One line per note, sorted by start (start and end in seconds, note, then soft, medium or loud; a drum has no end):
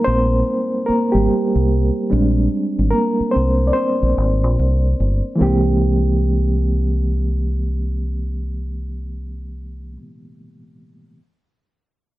0.00 1.14 G3 soft
0.00 2.11 G#3 soft
0.00 0.88 A#3 medium
0.00 2.11 D#4 medium
0.00 0.86 A#4 medium
0.04 0.41 A#1 medium
0.04 0.83 C4 medium
0.04 0.89 C5 medium
0.86 1.11 A#3 medium
0.86 1.09 A#4 medium
0.86 muted fingered electric bass stroke soft
1.12 1.27 G#1 medium
1.12 1.66 G3 medium
1.12 1.65 G4 medium
1.30 muted fingered electric bass stroke soft
1.56 1.90 C2 medium
2.10 2.47 A#1 medium
2.10 2.68 G3 soft
2.10 2.68 G#3 soft
2.10 2.68 C4 soft
2.10 2.68 D4 medium
2.79 2.91 G#1 medium
2.90 3.30 A#3 medium
2.90 3.33 A#4 medium
3.21 muted fingered electric bass stroke soft
3.31 3.66 C4 medium
3.31 3.65 C5 medium
3.36 3.70 C2 medium
3.67 3.73 D5 medium
3.73 4.94 C4 medium
3.73 4.93 C5 medium
4.03 4.15 A#1 medium
4.18 4.44 G#1 medium
4.44 4.56 A#1 medium
4.59 4.93 C2 medium
5.00 5.21 G1 medium
5.36 9.90 E3 medium
5.36 9.92 G#3 medium
5.36 9.94 A#3 medium
5.41 9.96 C2 medium
5.41 9.95 C4 medium
5.41 9.97 G4 medium